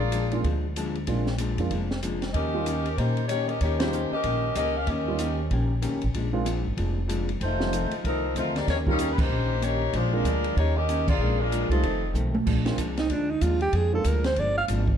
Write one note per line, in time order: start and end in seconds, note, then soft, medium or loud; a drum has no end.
0.00 0.41 A#1 medium
0.00 0.40 A#3 medium
0.00 0.41 F4 medium
0.00 0.40 G#4 medium
0.00 0.41 D5 loud
0.12 0.33 A#2 medium
0.12 0.33 F3 medium
0.12 0.33 G#3 medium
0.12 0.34 D4 medium
0.12 hi-hat pedal medium
0.12 ride medium
0.32 0.43 G#3 medium
0.32 0.43 A#3 medium
0.32 0.43 C4 medium
0.32 0.43 D4 medium
0.32 0.44 F4 medium
0.32 ride soft
0.44 1.04 D2 medium
0.44 0.65 A#2 soft
0.44 0.65 F3 medium
0.44 0.66 G#3 medium
0.44 0.66 D4 medium
0.44 kick soft
0.44 ride medium
0.76 0.97 A#2 medium
0.76 0.97 F3 medium
0.76 0.97 G#3 medium
0.76 0.97 D4 medium
0.76 hi-hat pedal medium
0.76 ride medium
0.95 ride soft
1.07 1.55 A#1 medium
1.07 1.28 A#2 soft
1.07 1.29 F3 soft
1.07 1.25 G#3 medium
1.07 1.29 G#3 medium
1.07 1.25 A#3 soft
1.07 1.25 C4 soft
1.07 1.25 D4 medium
1.07 1.29 D4 medium
1.07 1.25 F4 medium
1.07 kick soft
1.07 ride medium
1.26 snare medium
1.38 1.60 A#2 medium
1.38 1.60 F3 medium
1.38 1.60 G#3 medium
1.38 1.60 D4 medium
1.38 hi-hat pedal medium
1.38 ride medium
1.57 1.69 F2 medium
1.57 1.70 G#3 medium
1.57 1.70 A#3 medium
1.57 1.70 C4 medium
1.57 1.70 D4 medium
1.57 1.70 F4 medium
1.57 ride medium
1.71 2.31 F1 medium
1.71 1.92 A#2 medium
1.71 1.92 F3 medium
1.71 1.93 G#3 medium
1.71 1.93 D4 medium
1.71 kick soft
1.71 ride medium
1.91 snare soft
2.03 2.23 A#2 medium
2.03 2.23 F3 medium
2.03 2.24 G#3 medium
2.03 2.24 D4 medium
2.03 hi-hat pedal medium
2.03 ride medium
2.22 snare soft
2.22 ride soft
2.33 2.94 D#2 medium
2.33 2.55 D#3 soft
2.33 2.56 A#3 medium
2.33 2.93 C#4 medium
2.33 2.56 C#4 soft
2.33 2.93 G4 medium
2.33 2.56 G4 soft
2.33 2.93 A#4 medium
2.33 2.93 D#5 medium
2.33 kick soft
2.33 ride medium
2.54 2.65 G3 medium
2.54 2.65 A#3 medium
2.54 2.65 C#4 medium
2.54 2.65 D#4 medium
2.54 2.65 F4 medium
2.66 2.87 D#3 medium
2.66 2.87 A#3 medium
2.66 2.87 C#4 medium
2.66 2.87 G4 medium
2.66 hi-hat pedal medium
2.66 ride medium
2.85 ride medium
2.97 3.58 A#2 medium
2.97 3.19 D#3 soft
2.97 3.27 A#3 medium
2.97 3.19 A#3 medium
2.97 3.19 C#4 soft
2.97 3.27 D#4 medium
2.97 3.27 G4 medium
2.97 3.29 C5 medium
2.97 kick soft
2.97 ride medium
3.01 3.20 G4 soft
3.17 ride soft
3.28 3.50 D#3 medium
3.28 3.47 A#3 medium
3.28 3.51 A#3 medium
3.28 3.51 C#4 medium
3.28 3.46 D#4 medium
3.28 3.47 G4 medium
3.28 3.51 G4 medium
3.28 3.47 C#5 medium
3.28 hi-hat pedal medium
3.28 ride medium
3.49 3.61 C#4 medium
3.49 3.60 G4 medium
3.49 3.61 A#4 medium
3.49 3.61 D#5 medium
3.49 ride soft
3.61 4.08 D#2 medium
3.61 3.82 D#3 soft
3.61 3.79 A#3 medium
3.61 3.83 A#3 soft
3.61 3.83 C#4 soft
3.61 3.79 D#4 medium
3.61 3.78 G4 medium
3.61 3.83 G4 medium
3.61 3.79 C#5 medium
3.61 kick soft
3.61 ride medium
3.79 3.91 G3 medium
3.79 4.10 A#3 medium
3.79 3.92 A#3 medium
3.79 3.91 C#4 medium
3.79 4.10 D#4 medium
3.79 3.92 D#4 medium
3.79 3.92 F4 medium
3.79 4.09 G4 medium
3.79 4.09 C5 medium
3.79 snare medium
3.79 ride medium
3.93 4.14 D#3 medium
3.93 4.14 A#3 medium
3.93 4.14 C#4 medium
3.93 4.14 G4 medium
3.93 hi-hat pedal medium
4.11 4.53 C#4 medium
4.11 4.54 G4 medium
4.11 4.53 A#4 loud
4.11 4.54 D#5 loud
4.11 muted upright bass stroke soft
4.24 4.53 A#1 medium
4.24 4.45 D#3 medium
4.24 4.46 A#3 medium
4.24 4.46 C#4 medium
4.24 4.46 G4 medium
4.24 kick soft
4.24 ride medium
4.55 4.85 C#2 medium
4.55 4.76 D#3 medium
4.55 4.76 A#3 medium
4.55 4.77 C#4 medium
4.55 4.75 C#4 medium
4.55 4.77 G4 medium
4.55 4.75 G4 medium
4.55 4.74 A#4 medium
4.55 4.75 D#5 loud
4.55 hi-hat pedal medium
4.55 ride medium
4.77 4.88 C#4 medium
4.77 4.88 G4 medium
4.77 4.88 A#4 medium
4.77 4.89 F5 medium
4.87 5.47 D#2 medium
4.87 5.08 D#3 soft
4.87 5.08 A#3 medium
4.87 5.08 C#4 medium
4.87 5.52 C#4 medium
4.87 5.52 G4 medium
4.87 5.09 G4 medium
4.87 5.52 A#4 medium
4.87 5.52 D#5 medium
4.87 kick soft
4.87 ride medium
5.08 5.19 G3 medium
5.08 5.19 A#3 medium
5.08 5.19 C#4 medium
5.08 5.19 D#4 medium
5.08 5.19 F4 medium
5.19 5.40 D#3 medium
5.19 5.40 A#3 medium
5.19 5.40 C#4 medium
5.19 5.40 G4 medium
5.19 hi-hat pedal medium
5.19 ride medium
5.51 5.90 A#1 medium
5.51 5.72 D#3 medium
5.51 5.72 A#3 medium
5.51 5.72 C#4 medium
5.51 5.73 G4 medium
5.51 kick soft
5.51 ride medium
5.82 6.03 D#3 medium
5.82 6.03 A#3 medium
5.82 6.03 C#4 medium
5.82 6.04 G4 medium
5.82 hi-hat pedal medium
5.82 ride medium
5.93 6.03 C#2 medium
6.02 6.13 A1 medium
6.02 ride soft
6.14 6.62 A#1 medium
6.14 6.35 A#2 soft
6.14 6.35 F3 medium
6.14 6.36 G#3 medium
6.14 6.36 D4 medium
6.14 kick soft
6.14 ride medium
6.33 6.44 G#3 medium
6.33 6.45 A#3 medium
6.33 6.44 C4 medium
6.33 6.45 D4 medium
6.33 6.45 F4 medium
6.45 6.66 A#2 medium
6.45 6.66 F3 medium
6.45 6.66 G#3 medium
6.45 6.67 D4 medium
6.45 hi-hat pedal medium
6.45 ride medium
6.66 6.77 G#1 medium
6.77 7.38 F1 medium
6.77 6.98 A#2 medium
6.77 6.98 F3 medium
6.77 6.99 G#3 medium
6.77 6.99 D4 medium
6.77 kick soft
6.77 ride medium
7.08 7.29 A#2 medium
7.08 7.29 F3 medium
7.08 7.30 G#3 medium
7.08 7.30 D4 medium
7.08 hi-hat pedal medium
7.08 ride medium
7.29 ride soft
7.40 7.88 F1 medium
7.40 7.61 F2 soft
7.40 7.61 D#3 soft
7.40 7.62 A3 soft
7.40 8.01 A3 medium
7.40 7.62 C4 soft
7.40 8.01 D#4 medium
7.40 8.01 F4 medium
7.40 8.01 C5 medium
7.40 kick soft
7.40 ride medium
7.59 7.71 G3 medium
7.59 7.71 A3 medium
7.59 7.71 C4 soft
7.59 7.71 D#4 medium
7.59 7.71 F4 medium
7.59 snare medium
7.73 7.93 F2 medium
7.73 7.94 D#3 medium
7.73 7.94 A3 medium
7.73 7.94 C4 medium
7.73 hi-hat pedal medium
7.73 ride medium
7.91 muted upright bass stroke soft
7.91 ride medium
8.04 8.33 C2 medium
8.04 8.24 F2 soft
8.04 8.25 D#3 soft
8.04 8.35 F3 medium
8.04 8.25 A3 soft
8.04 8.35 C4 medium
8.04 8.26 C4 medium
8.04 8.35 D#4 medium
8.04 8.35 A#4 medium
8.04 kick soft
8.04 ride medium
8.35 8.65 D2 medium
8.35 8.57 F2 medium
8.35 8.57 D#3 medium
8.35 8.54 A3 medium
8.35 8.57 A3 medium
8.35 8.57 C4 medium
8.35 8.55 D#4 medium
8.35 8.55 F4 medium
8.35 8.55 C5 medium
8.35 hi-hat pedal soft
8.35 ride medium
8.56 8.68 A#3 medium
8.56 8.68 D#4 medium
8.56 8.68 G4 medium
8.56 8.68 D5 medium
8.56 snare soft
8.56 ride soft
8.67 9.27 D#2 medium
8.67 8.88 D#3 soft
8.67 8.89 A#3 medium
8.67 8.78 A#3 medium
8.67 8.89 C#4 medium
8.67 8.78 D#4 medium
8.67 8.78 G4 medium
8.67 8.89 G4 soft
8.67 8.78 C#5 medium
8.67 kick soft
8.67 snare soft
8.67 ride medium
8.87 8.98 G3 medium
8.87 9.10 G3 medium
8.87 8.98 A#3 medium
8.87 8.98 C#4 medium
8.87 9.10 C#4 medium
8.87 8.98 D#4 medium
8.87 9.10 D#4 medium
8.87 8.98 F4 medium
8.87 9.09 A#4 medium
8.87 kick medium
8.99 9.20 D#3 medium
8.99 9.20 A#3 medium
8.99 9.21 C#4 medium
8.99 9.21 G4 medium
8.99 hi-hat pedal medium
8.99 ride medium
9.11 9.19 B4 medium
9.18 9.63 A#3 medium
9.18 9.63 D#4 medium
9.18 9.63 G4 medium
9.18 9.64 C5 loud
9.18 kick medium
9.18 crash medium
9.30 9.90 A#1 medium
9.30 9.51 D#3 medium
9.30 9.52 A#3 soft
9.30 9.52 C#4 medium
9.30 9.52 G4 medium
9.61 9.82 D#3 medium
9.61 9.83 A#3 medium
9.61 9.95 A#3 medium
9.61 9.83 C#4 medium
9.61 9.95 D#4 medium
9.61 9.83 G4 medium
9.61 9.95 G4 medium
9.61 9.95 C#5 loud
9.61 hi-hat pedal medium
9.61 ride medium
9.92 10.23 A#1 medium
9.92 10.14 A#2 soft
9.92 10.14 F3 soft
9.92 10.14 G#3 soft
9.92 10.13 G#3 medium
9.92 10.15 D4 soft
9.92 10.14 D4 medium
9.92 10.14 F4 medium
9.92 10.14 C5 medium
9.92 kick soft
9.92 ride medium
10.13 10.24 G#3 medium
10.13 10.58 G#3 medium
10.13 10.24 A#3 medium
10.13 10.24 C4 medium
10.13 10.24 D4 medium
10.13 10.58 D4 medium
10.13 10.24 F4 medium
10.13 10.58 F4 medium
10.13 10.58 A#4 medium
10.24 10.54 D2 medium
10.24 10.45 A#2 medium
10.24 10.46 F3 medium
10.24 10.46 G#3 medium
10.24 10.46 D4 medium
10.24 hi-hat pedal medium
10.24 ride medium
10.44 ride medium
10.56 11.17 D#2 medium
10.56 10.77 D#3 medium
10.56 10.78 A#3 soft
10.56 10.75 A#3 medium
10.56 10.78 C#4 medium
10.56 10.75 D#4 medium
10.56 10.75 G4 medium
10.56 10.78 G4 medium
10.56 10.75 C#5 loud
10.56 kick soft
10.56 ride medium
10.77 11.08 C#4 loud
10.77 11.08 G4 medium
10.77 11.08 A#4 medium
10.77 11.08 D#5 loud
10.88 11.09 D#3 medium
10.88 11.09 A#3 medium
10.88 11.09 C#4 medium
10.88 11.10 G4 medium
10.88 hi-hat pedal medium
10.88 ride medium
11.08 11.38 A#3 medium
11.08 11.38 F4 medium
11.08 11.38 G#4 medium
11.08 11.38 D5 loud
11.08 kick medium
11.08 crash medium
11.18 11.66 A#1 medium
11.18 11.41 A#2 soft
11.18 11.41 F3 medium
11.18 11.38 G#3 medium
11.18 11.38 A#3 medium
11.18 11.38 C4 medium
11.18 11.38 D4 medium
11.18 11.38 F4 medium
11.22 11.41 G#3 soft
11.22 11.42 D4 medium
11.40 11.71 G#3 medium
11.40 11.71 D4 medium
11.40 11.71 F4 medium
11.40 11.71 A#4 loud
11.52 11.72 A#2 medium
11.52 11.73 F3 medium
11.52 11.73 G#3 medium
11.52 11.73 D4 medium
11.52 hi-hat pedal medium
11.52 ride medium
11.69 11.81 C2 medium
11.69 12.12 F3 medium
11.69 11.82 G3 medium
11.69 11.82 A3 medium
11.69 12.12 C4 medium
11.69 11.82 C4 medium
11.69 11.82 D#4 medium
11.69 12.12 D#4 medium
11.69 11.82 F4 medium
11.69 12.12 A4 medium
11.69 ride medium
11.83 12.13 F1 medium
11.83 12.04 F2 soft
11.83 12.04 D#3 medium
11.83 12.04 A3 soft
11.83 12.05 C4 medium
11.83 kick soft
11.83 ride medium
12.13 12.43 B1 medium
12.13 12.35 F2 medium
12.13 12.35 D#3 medium
12.13 12.35 A3 medium
12.13 12.36 C4 medium
12.13 hi-hat pedal medium
12.35 high tom medium
12.45 12.77 A#1 medium
12.45 12.66 A#2 medium
12.45 12.67 F3 medium
12.45 12.67 G#3 medium
12.45 12.67 D4 medium
12.45 kick medium
12.45 crash medium
12.65 12.77 G#3 medium
12.65 12.77 A#3 medium
12.65 12.77 C4 medium
12.65 12.77 D4 medium
12.65 12.77 F4 medium
12.65 snare medium
12.65 ride soft
12.78 13.09 C2 medium
12.78 12.99 A#2 medium
12.78 12.99 F3 medium
12.78 12.99 G#3 medium
12.78 12.99 D4 medium
12.78 kick soft
12.78 hi-hat pedal medium
12.78 ride medium
12.97 13.13 D#4 medium
12.97 snare medium
12.97 ride medium
13.09 13.40 D2 medium
13.09 13.30 A#2 soft
13.09 13.31 F3 soft
13.09 13.31 G#3 medium
13.09 13.32 D4 medium
13.09 13.31 D4 soft
13.09 kick soft
13.09 ride medium
13.30 13.44 D#4 medium
13.41 13.72 D#2 loud
13.41 13.62 A#2 medium
13.41 13.63 F3 medium
13.41 13.63 G#3 medium
13.41 13.63 D4 medium
13.41 13.61 F4 medium
13.41 kick soft
13.41 hi-hat pedal medium
13.41 ride medium
13.61 13.77 G4 medium
13.61 ride soft
13.73 14.04 F2 medium
13.73 13.94 A#2 soft
13.73 13.94 F3 soft
13.73 13.95 G#3 soft
13.73 13.95 D4 medium
13.73 13.94 G#4 medium
13.73 kick soft
13.73 ride medium
13.92 14.04 G#3 medium
13.92 14.04 A#3 medium
13.92 14.04 C4 soft
13.92 14.04 D4 medium
13.92 14.04 F4 medium
13.92 14.09 A4 medium
14.04 14.35 D2 medium
14.04 14.26 A#2 medium
14.04 14.26 F3 medium
14.04 14.27 G#3 medium
14.04 14.27 D4 medium
14.04 14.25 A#4 medium
14.04 kick soft
14.04 hi-hat pedal medium
14.04 ride medium
14.24 14.41 C5 medium
14.24 snare medium
14.24 ride medium
14.36 14.67 G1 medium
14.36 14.58 A#2 medium
14.36 14.58 F3 soft
14.36 14.58 G#3 medium
14.36 14.59 D4 medium
14.36 14.57 D5 medium
14.36 kick soft
14.36 ride medium
14.57 14.64 F5 medium
14.68 14.97 G#1 medium
14.68 14.89 A#2 medium
14.68 14.89 F3 medium
14.68 14.90 G#3 medium
14.68 14.90 D4 medium
14.68 kick soft
14.68 hi-hat pedal medium
14.68 ride medium
14.88 kick medium